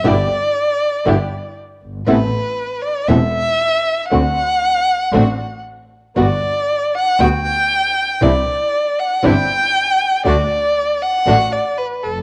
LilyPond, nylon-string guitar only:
\new Staff \with { instrumentName = "Nylon-string guitar" } { \time 4/4 \key d \mixolydian \tempo 4 = 118 <b, d g b e'>8 r4. <b, d g b e'>8 r4. | <c e a b e'>8 r4. <c e a b e'>8 r4. | <d a c' fis'>8 r4. <d a c' fis'>8 r4. | <g b fis'>8 r4. <g b fis'>8 r4. |
<c e g d' e'>8 r4. <c e g d' e'>8 r4. | <d a d' fis'>8 r4. <d a d' fis'>8 r4. | }